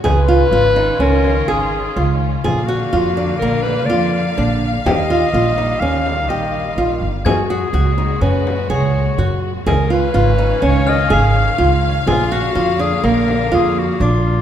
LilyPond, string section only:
\new Staff \with { instrumentName = "String section" } { \time 5/4 \key cis \mixolydian \tempo 4 = 125 << { eis'1~ eis'4 | eis''1~ eis''4~ | eis''1~ eis''4 | fis'1~ fis'4 |
eis''1~ eis''4~ | eis''1~ eis''4 | } \\ { <dis cis'>1~ <dis cis'>4 | <d ais>1~ <d ais>4 | <dis g>1~ <dis g>4 | <ais, gis>1~ <ais, gis>4 |
<dis cis'>1~ <dis cis'>4 | <d ais>1~ <d ais>4 | } >> }